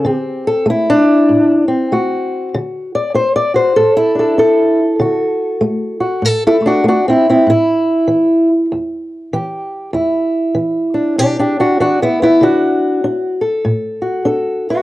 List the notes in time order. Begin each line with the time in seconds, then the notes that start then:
Already playing: A4
0.04 D3 C4
0.12 G4
0.47 A4
0.66 A3
0.70 E4
0.90 D4
1.29 A2
1.68 C4
1.92 A3 F#4
2.54 D3
2.95 D5
3.15 D4 C5
3.36 D5
3.54 F#4 C5
3.76 A2 A4
3.97 E4
4.15 D4
4.19 A4
4.38 D4 A4
5.00 D3 F#4
5.61 A3
6.00 F#4
6.22 A2 A4
6.47 E4 A4
6.61 A3
6.66 D4 F#4
6.84 A3
6.88 D4 F#4
7.08 C4 E4
7.29 C4 E4
7.47 A2 E4
8.07 E3
8.72 E2
9.33 E3 G4
9.93 E2 E4
10.54 E3
10.94 D4
11.18 B2 D4 G4
11.39 D4 G4
11.60 D4 F#4
11.80 E3 D4 F#4
12.02 B3 E4
12.22 B3 E4
12.41 D3 D4 F#4
13.04 D4
13.41 A4
13.65 A2
14.02 F#4
14.25 D4 A4
14.70 F#4 B4